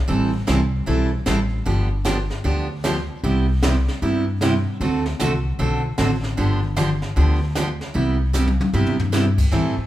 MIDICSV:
0, 0, Header, 1, 5, 480
1, 0, Start_track
1, 0, Key_signature, 0, "major"
1, 0, Tempo, 393443
1, 100, Time_signature, 4, 2, 24, 8
1, 12038, End_track
2, 0, Start_track
2, 0, Title_t, "Steel-string acoustic guitar"
2, 0, Program_c, 0, 25
2, 92, Note_on_c, 0, 52, 62
2, 93, Note_on_c, 0, 55, 60
2, 100, Note_on_c, 0, 64, 63
2, 101, Note_on_c, 0, 60, 57
2, 108, Note_on_c, 0, 69, 68
2, 363, Note_off_c, 0, 52, 0
2, 364, Note_off_c, 0, 55, 0
2, 367, Note_off_c, 0, 60, 0
2, 367, Note_off_c, 0, 64, 0
2, 371, Note_off_c, 0, 69, 0
2, 573, Note_on_c, 0, 52, 65
2, 577, Note_on_c, 0, 55, 72
2, 580, Note_on_c, 0, 60, 80
2, 582, Note_on_c, 0, 64, 75
2, 588, Note_on_c, 0, 69, 78
2, 718, Note_off_c, 0, 52, 0
2, 720, Note_off_c, 0, 55, 0
2, 722, Note_off_c, 0, 60, 0
2, 723, Note_off_c, 0, 64, 0
2, 726, Note_off_c, 0, 69, 0
2, 1053, Note_on_c, 0, 52, 53
2, 1060, Note_on_c, 0, 55, 61
2, 1062, Note_on_c, 0, 60, 57
2, 1064, Note_on_c, 0, 64, 59
2, 1069, Note_on_c, 0, 69, 60
2, 1324, Note_off_c, 0, 52, 0
2, 1327, Note_off_c, 0, 55, 0
2, 1328, Note_off_c, 0, 60, 0
2, 1329, Note_off_c, 0, 64, 0
2, 1332, Note_off_c, 0, 69, 0
2, 1536, Note_on_c, 0, 52, 81
2, 1541, Note_on_c, 0, 55, 70
2, 1544, Note_on_c, 0, 60, 70
2, 1547, Note_on_c, 0, 64, 73
2, 1550, Note_on_c, 0, 69, 88
2, 1680, Note_off_c, 0, 52, 0
2, 1682, Note_off_c, 0, 55, 0
2, 1684, Note_off_c, 0, 60, 0
2, 1685, Note_off_c, 0, 64, 0
2, 1687, Note_off_c, 0, 69, 0
2, 2019, Note_on_c, 0, 50, 63
2, 2025, Note_on_c, 0, 59, 58
2, 2026, Note_on_c, 0, 53, 66
2, 2030, Note_on_c, 0, 62, 62
2, 2032, Note_on_c, 0, 67, 64
2, 2287, Note_off_c, 0, 50, 0
2, 2290, Note_off_c, 0, 59, 0
2, 2291, Note_off_c, 0, 53, 0
2, 2292, Note_off_c, 0, 62, 0
2, 2293, Note_off_c, 0, 67, 0
2, 2496, Note_on_c, 0, 50, 77
2, 2501, Note_on_c, 0, 53, 74
2, 2506, Note_on_c, 0, 59, 76
2, 2506, Note_on_c, 0, 67, 75
2, 2508, Note_on_c, 0, 62, 73
2, 2640, Note_off_c, 0, 50, 0
2, 2643, Note_off_c, 0, 53, 0
2, 2645, Note_off_c, 0, 59, 0
2, 2645, Note_off_c, 0, 67, 0
2, 2646, Note_off_c, 0, 62, 0
2, 2978, Note_on_c, 0, 50, 55
2, 2978, Note_on_c, 0, 53, 54
2, 2985, Note_on_c, 0, 59, 57
2, 2988, Note_on_c, 0, 62, 57
2, 2989, Note_on_c, 0, 67, 64
2, 3247, Note_off_c, 0, 50, 0
2, 3247, Note_off_c, 0, 53, 0
2, 3250, Note_off_c, 0, 59, 0
2, 3252, Note_off_c, 0, 62, 0
2, 3252, Note_off_c, 0, 67, 0
2, 3463, Note_on_c, 0, 50, 73
2, 3463, Note_on_c, 0, 53, 75
2, 3469, Note_on_c, 0, 59, 71
2, 3469, Note_on_c, 0, 62, 77
2, 3473, Note_on_c, 0, 67, 76
2, 3604, Note_off_c, 0, 50, 0
2, 3604, Note_off_c, 0, 53, 0
2, 3607, Note_off_c, 0, 59, 0
2, 3607, Note_off_c, 0, 62, 0
2, 3609, Note_off_c, 0, 67, 0
2, 3948, Note_on_c, 0, 55, 64
2, 3949, Note_on_c, 0, 48, 56
2, 3952, Note_on_c, 0, 59, 60
2, 3958, Note_on_c, 0, 64, 62
2, 3958, Note_on_c, 0, 67, 63
2, 4212, Note_off_c, 0, 48, 0
2, 4212, Note_off_c, 0, 55, 0
2, 4214, Note_off_c, 0, 59, 0
2, 4217, Note_off_c, 0, 64, 0
2, 4217, Note_off_c, 0, 67, 0
2, 4423, Note_on_c, 0, 48, 73
2, 4428, Note_on_c, 0, 55, 72
2, 4429, Note_on_c, 0, 59, 69
2, 4432, Note_on_c, 0, 64, 70
2, 4436, Note_on_c, 0, 67, 77
2, 4564, Note_off_c, 0, 48, 0
2, 4566, Note_off_c, 0, 55, 0
2, 4567, Note_off_c, 0, 59, 0
2, 4568, Note_off_c, 0, 64, 0
2, 4571, Note_off_c, 0, 67, 0
2, 4906, Note_on_c, 0, 48, 59
2, 4910, Note_on_c, 0, 55, 58
2, 4912, Note_on_c, 0, 59, 57
2, 4916, Note_on_c, 0, 64, 64
2, 4916, Note_on_c, 0, 67, 60
2, 5171, Note_off_c, 0, 48, 0
2, 5173, Note_off_c, 0, 55, 0
2, 5174, Note_off_c, 0, 59, 0
2, 5176, Note_off_c, 0, 64, 0
2, 5176, Note_off_c, 0, 67, 0
2, 5388, Note_on_c, 0, 48, 74
2, 5392, Note_on_c, 0, 55, 71
2, 5392, Note_on_c, 0, 59, 79
2, 5396, Note_on_c, 0, 64, 82
2, 5397, Note_on_c, 0, 67, 78
2, 5526, Note_off_c, 0, 48, 0
2, 5528, Note_off_c, 0, 55, 0
2, 5528, Note_off_c, 0, 59, 0
2, 5530, Note_off_c, 0, 64, 0
2, 5531, Note_off_c, 0, 67, 0
2, 5864, Note_on_c, 0, 50, 57
2, 5868, Note_on_c, 0, 57, 66
2, 5870, Note_on_c, 0, 60, 60
2, 5875, Note_on_c, 0, 69, 73
2, 5876, Note_on_c, 0, 66, 63
2, 6130, Note_off_c, 0, 50, 0
2, 6132, Note_off_c, 0, 57, 0
2, 6133, Note_off_c, 0, 60, 0
2, 6135, Note_off_c, 0, 69, 0
2, 6136, Note_off_c, 0, 66, 0
2, 6346, Note_on_c, 0, 50, 71
2, 6351, Note_on_c, 0, 57, 74
2, 6353, Note_on_c, 0, 60, 68
2, 6359, Note_on_c, 0, 66, 79
2, 6359, Note_on_c, 0, 69, 81
2, 6485, Note_off_c, 0, 50, 0
2, 6488, Note_off_c, 0, 57, 0
2, 6489, Note_off_c, 0, 60, 0
2, 6492, Note_off_c, 0, 66, 0
2, 6492, Note_off_c, 0, 69, 0
2, 6818, Note_on_c, 0, 50, 59
2, 6822, Note_on_c, 0, 60, 60
2, 6826, Note_on_c, 0, 57, 61
2, 6830, Note_on_c, 0, 69, 62
2, 6832, Note_on_c, 0, 66, 64
2, 7087, Note_off_c, 0, 50, 0
2, 7089, Note_off_c, 0, 60, 0
2, 7091, Note_off_c, 0, 57, 0
2, 7093, Note_off_c, 0, 69, 0
2, 7094, Note_off_c, 0, 66, 0
2, 7293, Note_on_c, 0, 50, 72
2, 7295, Note_on_c, 0, 57, 72
2, 7299, Note_on_c, 0, 60, 81
2, 7305, Note_on_c, 0, 66, 77
2, 7307, Note_on_c, 0, 69, 83
2, 7439, Note_off_c, 0, 50, 0
2, 7440, Note_off_c, 0, 57, 0
2, 7442, Note_off_c, 0, 60, 0
2, 7445, Note_off_c, 0, 66, 0
2, 7446, Note_off_c, 0, 69, 0
2, 7775, Note_on_c, 0, 50, 67
2, 7777, Note_on_c, 0, 53, 58
2, 7781, Note_on_c, 0, 59, 71
2, 7783, Note_on_c, 0, 62, 69
2, 7788, Note_on_c, 0, 67, 62
2, 8045, Note_off_c, 0, 50, 0
2, 8046, Note_off_c, 0, 53, 0
2, 8048, Note_off_c, 0, 59, 0
2, 8049, Note_off_c, 0, 62, 0
2, 8051, Note_off_c, 0, 67, 0
2, 8253, Note_on_c, 0, 50, 81
2, 8255, Note_on_c, 0, 53, 76
2, 8257, Note_on_c, 0, 59, 68
2, 8259, Note_on_c, 0, 62, 81
2, 8265, Note_on_c, 0, 67, 79
2, 8398, Note_off_c, 0, 50, 0
2, 8399, Note_off_c, 0, 53, 0
2, 8400, Note_off_c, 0, 59, 0
2, 8401, Note_off_c, 0, 62, 0
2, 8404, Note_off_c, 0, 67, 0
2, 8736, Note_on_c, 0, 50, 59
2, 8744, Note_on_c, 0, 53, 60
2, 8744, Note_on_c, 0, 59, 63
2, 8744, Note_on_c, 0, 62, 63
2, 8748, Note_on_c, 0, 67, 65
2, 9005, Note_off_c, 0, 50, 0
2, 9009, Note_off_c, 0, 53, 0
2, 9009, Note_off_c, 0, 59, 0
2, 9009, Note_off_c, 0, 62, 0
2, 9011, Note_off_c, 0, 67, 0
2, 9215, Note_on_c, 0, 50, 70
2, 9222, Note_on_c, 0, 59, 73
2, 9223, Note_on_c, 0, 53, 70
2, 9225, Note_on_c, 0, 62, 73
2, 9228, Note_on_c, 0, 67, 81
2, 9359, Note_off_c, 0, 50, 0
2, 9362, Note_off_c, 0, 59, 0
2, 9363, Note_off_c, 0, 53, 0
2, 9364, Note_off_c, 0, 62, 0
2, 9366, Note_off_c, 0, 67, 0
2, 9688, Note_on_c, 0, 48, 58
2, 9693, Note_on_c, 0, 55, 60
2, 9699, Note_on_c, 0, 59, 64
2, 9700, Note_on_c, 0, 64, 62
2, 9701, Note_on_c, 0, 67, 58
2, 9961, Note_off_c, 0, 48, 0
2, 9963, Note_off_c, 0, 55, 0
2, 9966, Note_off_c, 0, 59, 0
2, 9967, Note_off_c, 0, 64, 0
2, 9967, Note_off_c, 0, 67, 0
2, 10167, Note_on_c, 0, 48, 64
2, 10173, Note_on_c, 0, 55, 74
2, 10177, Note_on_c, 0, 64, 80
2, 10178, Note_on_c, 0, 59, 83
2, 10181, Note_on_c, 0, 67, 84
2, 10315, Note_off_c, 0, 48, 0
2, 10318, Note_off_c, 0, 55, 0
2, 10320, Note_off_c, 0, 59, 0
2, 10320, Note_off_c, 0, 64, 0
2, 10322, Note_off_c, 0, 67, 0
2, 10658, Note_on_c, 0, 48, 57
2, 10662, Note_on_c, 0, 55, 60
2, 10665, Note_on_c, 0, 59, 60
2, 10668, Note_on_c, 0, 64, 59
2, 10669, Note_on_c, 0, 67, 68
2, 10925, Note_off_c, 0, 48, 0
2, 10927, Note_off_c, 0, 55, 0
2, 10929, Note_off_c, 0, 59, 0
2, 10930, Note_off_c, 0, 64, 0
2, 10931, Note_off_c, 0, 67, 0
2, 11129, Note_on_c, 0, 48, 66
2, 11133, Note_on_c, 0, 55, 72
2, 11134, Note_on_c, 0, 59, 73
2, 11138, Note_on_c, 0, 64, 84
2, 11140, Note_on_c, 0, 67, 78
2, 11275, Note_off_c, 0, 48, 0
2, 11277, Note_off_c, 0, 55, 0
2, 11278, Note_off_c, 0, 59, 0
2, 11280, Note_off_c, 0, 64, 0
2, 11280, Note_off_c, 0, 67, 0
2, 11608, Note_on_c, 0, 52, 62
2, 11614, Note_on_c, 0, 55, 60
2, 11618, Note_on_c, 0, 60, 59
2, 11619, Note_on_c, 0, 64, 68
2, 11622, Note_on_c, 0, 69, 65
2, 11879, Note_off_c, 0, 52, 0
2, 11882, Note_off_c, 0, 55, 0
2, 11884, Note_off_c, 0, 60, 0
2, 11885, Note_off_c, 0, 64, 0
2, 11886, Note_off_c, 0, 69, 0
2, 12038, End_track
3, 0, Start_track
3, 0, Title_t, "Upright bass"
3, 0, Program_c, 1, 32
3, 104, Note_on_c, 1, 33, 96
3, 487, Note_off_c, 1, 33, 0
3, 588, Note_on_c, 1, 36, 81
3, 993, Note_off_c, 1, 36, 0
3, 1067, Note_on_c, 1, 35, 85
3, 1473, Note_off_c, 1, 35, 0
3, 1546, Note_on_c, 1, 33, 81
3, 1952, Note_off_c, 1, 33, 0
3, 2030, Note_on_c, 1, 31, 87
3, 2795, Note_off_c, 1, 31, 0
3, 2982, Note_on_c, 1, 38, 84
3, 3750, Note_off_c, 1, 38, 0
3, 3946, Note_on_c, 1, 36, 88
3, 4713, Note_off_c, 1, 36, 0
3, 4906, Note_on_c, 1, 43, 85
3, 5673, Note_off_c, 1, 43, 0
3, 5862, Note_on_c, 1, 38, 89
3, 6246, Note_off_c, 1, 38, 0
3, 6345, Note_on_c, 1, 36, 78
3, 6752, Note_off_c, 1, 36, 0
3, 6822, Note_on_c, 1, 35, 86
3, 7230, Note_off_c, 1, 35, 0
3, 7306, Note_on_c, 1, 33, 87
3, 7712, Note_off_c, 1, 33, 0
3, 7780, Note_on_c, 1, 31, 89
3, 8548, Note_off_c, 1, 31, 0
3, 8743, Note_on_c, 1, 38, 85
3, 9510, Note_off_c, 1, 38, 0
3, 9701, Note_on_c, 1, 36, 85
3, 10468, Note_off_c, 1, 36, 0
3, 10657, Note_on_c, 1, 43, 80
3, 11425, Note_off_c, 1, 43, 0
3, 11615, Note_on_c, 1, 45, 85
3, 11904, Note_off_c, 1, 45, 0
3, 12038, End_track
4, 0, Start_track
4, 0, Title_t, "Muted upright bass strokes"
4, 11928, Note_on_c, 9, 29, 43
4, 12038, Note_off_c, 9, 29, 0
4, 12038, End_track
5, 0, Start_track
5, 0, Title_t, "Drums"
5, 98, Note_on_c, 9, 25, 46
5, 578, Note_on_c, 9, 38, 68
5, 578, Note_on_c, 9, 44, 60
5, 700, Note_off_c, 9, 38, 0
5, 700, Note_off_c, 9, 44, 0
5, 1058, Note_off_c, 9, 25, 0
5, 1058, Note_on_c, 9, 25, 44
5, 1538, Note_on_c, 9, 38, 66
5, 1538, Note_on_c, 9, 44, 60
5, 1660, Note_off_c, 9, 38, 0
5, 1660, Note_off_c, 9, 44, 0
5, 2019, Note_off_c, 9, 25, 0
5, 2019, Note_on_c, 9, 25, 45
5, 2499, Note_on_c, 9, 38, 68
5, 2499, Note_on_c, 9, 44, 62
5, 2621, Note_off_c, 9, 38, 0
5, 2621, Note_off_c, 9, 44, 0
5, 2809, Note_on_c, 9, 38, 36
5, 2931, Note_off_c, 9, 38, 0
5, 2984, Note_off_c, 9, 25, 0
5, 2984, Note_on_c, 9, 25, 47
5, 3463, Note_on_c, 9, 38, 65
5, 3463, Note_on_c, 9, 44, 62
5, 3585, Note_off_c, 9, 38, 0
5, 3585, Note_off_c, 9, 44, 0
5, 3943, Note_off_c, 9, 25, 0
5, 3943, Note_on_c, 9, 25, 52
5, 4423, Note_on_c, 9, 38, 70
5, 4423, Note_on_c, 9, 44, 67
5, 4545, Note_off_c, 9, 38, 0
5, 4545, Note_off_c, 9, 44, 0
5, 4736, Note_on_c, 9, 38, 36
5, 4858, Note_off_c, 9, 38, 0
5, 4904, Note_off_c, 9, 25, 0
5, 4904, Note_on_c, 9, 25, 46
5, 5380, Note_on_c, 9, 38, 67
5, 5380, Note_on_c, 9, 44, 56
5, 5502, Note_off_c, 9, 38, 0
5, 5502, Note_off_c, 9, 44, 0
5, 5859, Note_off_c, 9, 25, 0
5, 5859, Note_on_c, 9, 25, 47
5, 6168, Note_on_c, 9, 38, 41
5, 6290, Note_off_c, 9, 38, 0
5, 6339, Note_on_c, 9, 38, 65
5, 6339, Note_on_c, 9, 44, 68
5, 6461, Note_off_c, 9, 38, 0
5, 6461, Note_off_c, 9, 44, 0
5, 6818, Note_off_c, 9, 25, 0
5, 6818, Note_on_c, 9, 25, 48
5, 7295, Note_on_c, 9, 38, 64
5, 7295, Note_on_c, 9, 44, 57
5, 7417, Note_off_c, 9, 38, 0
5, 7417, Note_off_c, 9, 44, 0
5, 7606, Note_on_c, 9, 38, 38
5, 7728, Note_off_c, 9, 38, 0
5, 7776, Note_off_c, 9, 25, 0
5, 7776, Note_on_c, 9, 25, 53
5, 8254, Note_on_c, 9, 38, 64
5, 8254, Note_on_c, 9, 44, 63
5, 8376, Note_off_c, 9, 38, 0
5, 8376, Note_off_c, 9, 44, 0
5, 8564, Note_on_c, 9, 38, 35
5, 8686, Note_off_c, 9, 38, 0
5, 8735, Note_off_c, 9, 25, 0
5, 8735, Note_on_c, 9, 25, 43
5, 9215, Note_on_c, 9, 38, 68
5, 9215, Note_on_c, 9, 44, 69
5, 9337, Note_off_c, 9, 38, 0
5, 9337, Note_off_c, 9, 44, 0
5, 9527, Note_on_c, 9, 38, 40
5, 9649, Note_off_c, 9, 38, 0
5, 9698, Note_off_c, 9, 25, 0
5, 9698, Note_on_c, 9, 25, 54
5, 10173, Note_on_c, 9, 44, 66
5, 10173, Note_on_c, 9, 48, 48
5, 10295, Note_off_c, 9, 44, 0
5, 10295, Note_off_c, 9, 48, 0
5, 10338, Note_on_c, 9, 48, 57
5, 10460, Note_off_c, 9, 48, 0
5, 10499, Note_on_c, 9, 48, 66
5, 10621, Note_off_c, 9, 48, 0
5, 10655, Note_on_c, 9, 43, 62
5, 10777, Note_off_c, 9, 43, 0
5, 10816, Note_on_c, 9, 43, 72
5, 10938, Note_off_c, 9, 43, 0
5, 10974, Note_on_c, 9, 43, 94
5, 11096, Note_off_c, 9, 43, 0
5, 11135, Note_on_c, 9, 38, 59
5, 11135, Note_on_c, 9, 44, 64
5, 11257, Note_off_c, 9, 38, 0
5, 11257, Note_off_c, 9, 44, 0
5, 11443, Note_on_c, 9, 49, 73
5, 11444, Note_on_c, 9, 36, 77
5, 11565, Note_off_c, 9, 49, 0
5, 11566, Note_off_c, 9, 36, 0
5, 11619, Note_off_c, 9, 25, 0
5, 11619, Note_on_c, 9, 25, 49
5, 11619, Note_on_c, 9, 38, 47
5, 11741, Note_off_c, 9, 38, 0
5, 12038, Note_off_c, 9, 25, 0
5, 12038, End_track
0, 0, End_of_file